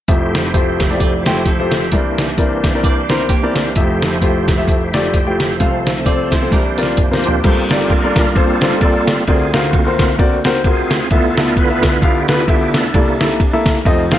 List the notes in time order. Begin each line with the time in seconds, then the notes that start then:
0.08 F1 F2 F3 A3 E4 F4 G4 C5 E5, kick, closed hi-hat
0.35 snare, closed hi-hat
0.54 A3 F4 G4 C5, kick, closed hi-hat
0.80 kick, snare, closed hi-hat
0.91 A3 F4 G4 D5
1.00 F4 D5, kick, closed hi-hat
1.26 A3 E4 F4 G4 C5 G5, snare, closed hi-hat
1.45 C4 A4, kick, closed hi-hat
1.60 A3 F4 G4 C5
1.71 snare, closed hi-hat
1.92 C2 C3 E3 A#3 C4 D4 E4 A#4 D5, kick, closed hi-hat
2.18 snare, closed hi-hat
2.38 C4 E4 A#4 D5, kick, closed hi-hat
2.64 kick, snare, closed hi-hat
2.75 C4 E4 A#4 D5
2.84 D5, kick, closed hi-hat
3.09 C4 D4 E4 A#4 C5, snare, closed hi-hat
3.29 A#3 G4, kick, closed hi-hat
3.43 C4 E4 A#4 D5
3.56 snare, closed hi-hat
3.76 F1 F2 F3 A3 E4 F4 G4 E5, kick, closed hi-hat
4.02 snare, closed hi-hat
4.22 A3 F4 G4 C5, kick, closed hi-hat
4.48 kick, snare, closed hi-hat
4.58 A3 F4 G4 E5
4.68 kick, closed hi-hat
4.94 A3 F4 G4 D5, snare, closed hi-hat
5.14 kick, closed hi-hat
5.27 A3 F4 G4 G5
5.40 snare, closed hi-hat
5.60 C2 C3 C4 F4 A4 F5, kick, closed hi-hat
5.87 snare, closed hi-hat
6.06 C4 F4 A4 C5 D5, kick, closed hi-hat
6.32 E4 C5, kick, snare, closed hi-hat
6.42 C4 F4 A4 C5
6.52 C2 C3 A#3 D4 G4 A#4, kick, snare, closed hi-hat
6.78 C4 F4 A#4 D5, closed hi-hat
6.83 snare
6.97 kick, closed hi-hat, mid tom
7.11 C4 F4 A#4 C5, snare
7.24 A#3 C4 G4, closed hi-hat
7.29 floor tom
7.44 G1 G2 A#3 F4 A4 C5, kick, crash, ride
7.71 G3 A#3 F4 A4 D5, snare, ride
7.90 D4 F4 A#4, kick, ride
8.04 A#3 F4 A4 D5
8.16 kick, snare, ride
8.36 A#3 C4 F4 A4 C5, kick, ride
8.61 A#3 F4 A4 C5, snare, ride
8.81 A#3 C4 F4 A4 D5, kick, ride
9.08 snare, ride
9.28 D2 D3 C4 F4 F#4 G#4 A#4 D5, kick, ride
9.53 D3 C4 F#4 A#4 F5, snare, ride
9.73 A#3 C4 F#4, kick, ride
9.87 C4 F#4 A#4 C5
9.99 kick, snare, ride
10.19 D3 C4 F#4 A#4 D5, kick, ride
10.44 C4 F#4 A#4 C5, snare, ride
10.64 C4 F4 F#4 G#4 A#4 C5, kick, ride
10.91 snare, ride
11.11 D2 D3 B3 E4 F4 A4 E5, kick, ride
11.37 B3 F4 A4 E5, snare, ride
11.51 A#4
11.56 E4 F4 B4, kick, ride
11.70 B3 F4 A4 E5
11.83 kick, snare, ride
12.02 B3 E4 F4 G4 A4 F5, kick, ride
12.28 B3 F4 A4 B4, snare, ride
12.48 B3 F4 G4 A4 E5, kick, ride
12.74 D4 E4 A4, snare, ride
12.94 C2 C3 A#3 E4 A4 D5, kick, ride
13.20 A#3 E4 A4 E5, snare, ride
13.40 kick, ride
13.53 A#3 E4 A4 E5
13.66 kick, snare, ride
13.85 F1 F2 F3 A3 C4 D#4 F4 A4 D#5, kick, ride
14.11 C4 F4 A4 F5, snare, ride